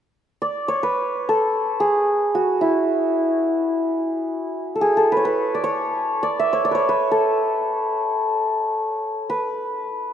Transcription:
0.42 0.74 D5 medium
0.68 3.24 C#5 medium
0.83 3.56 B4 medium
1.29 1.86 A4 medium
1.80 4.81 G#4 medium
2.35 5.60 F#4 medium
2.61 6.09 E4 medium
4.75 4.87 A4 soft
4.81 5.03 G#4 medium
4.97 7.11 A4 medium
5.12 5.25 B4 medium
5.17 5.61 C#5 medium
5.25 6.71 B4 medium
5.55 5.70 D5 medium
5.64 6.29 C#5 medium
6.23 6.59 D5 medium
6.39 8.69 E5 medium
6.53 6.71 C#5 medium
6.65 6.81 D5 medium
6.71 6.88 B4 medium
6.71 9.30 C#5 medium
6.89 9.29 B4 medium
7.11 10.04 A4 medium
9.30 10.13 B4 medium

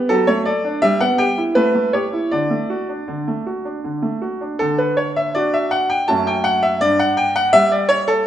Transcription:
0.00 0.10 B3 soft
0.09 0.28 F#3 medium
0.09 0.28 A4 medium
0.27 0.47 A3 soft
0.27 0.46 C#5 medium
0.46 0.65 A4 medium
0.46 0.82 D5 medium
0.65 0.83 D4 soft
0.82 1.00 G3 medium
0.82 1.00 E5 medium
1.01 1.20 B3 soft
1.01 1.19 F#5 medium
1.18 1.38 G4 medium
1.18 1.41 G5 medium
1.38 1.56 E4 soft
1.55 1.73 A3 medium
1.55 1.93 B4 medium
1.75 1.94 A3 soft
1.93 2.13 G4 soft
1.93 2.31 C#5 medium
2.13 2.31 E4 soft
2.31 2.50 D3 medium
2.31 3.23 D5 medium
2.50 2.70 A3 soft
2.70 2.89 F#4 soft
2.89 3.09 D4 soft
3.08 3.26 D3 soft
3.28 3.47 A3 soft
3.47 3.66 F#4 soft
3.65 3.85 D4 soft
3.84 4.02 D3 soft
4.02 4.22 A3 soft
4.22 4.42 F#4 soft
4.41 4.60 D4 soft
4.59 5.32 D3 medium
4.59 4.78 A4 medium
4.78 4.97 B4 medium
4.97 5.16 C#5 medium
5.16 5.35 E5 medium
5.35 5.88 D4 soft
5.35 5.88 F#4 soft
5.35 5.53 D5 medium
5.54 5.72 E5 medium
5.71 5.89 F#5 medium
5.90 6.08 G5 medium
6.08 6.80 F#2 soft
6.08 6.78 A3 soft
6.08 6.78 C#4 soft
6.08 6.78 F#4 soft
6.08 6.26 A5 medium
6.27 6.45 G5 medium
6.44 6.63 F#5 medium
6.63 6.81 E5 medium
6.81 7.52 G2 medium
6.81 6.99 D5 loud
6.99 7.18 F#5 medium
7.17 7.35 G5 medium
7.36 7.54 F#5 medium
7.53 8.27 G3 medium
7.53 7.71 E5 loud
7.72 7.90 D5 medium
7.89 8.07 C#5 medium
8.08 8.26 A4 medium

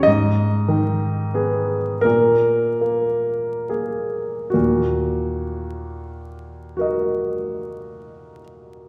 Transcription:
0.03 1.99 G#2 soft
0.03 2.02 D#5 medium
0.68 1.75 D#3 soft
1.34 2.00 B3 soft
1.34 2.00 G#4 soft
2.01 4.50 A#2 soft
2.01 4.52 A#4 medium
2.81 3.68 A#3 soft
3.69 4.49 A#3 soft
3.69 4.49 G#4 soft
4.50 8.41 D#2 soft
4.50 8.41 A#2 soft
4.50 6.75 F#4 soft
6.77 8.88 F#4 soft
6.77 8.88 A#4 soft
6.81 8.88 D#5 soft

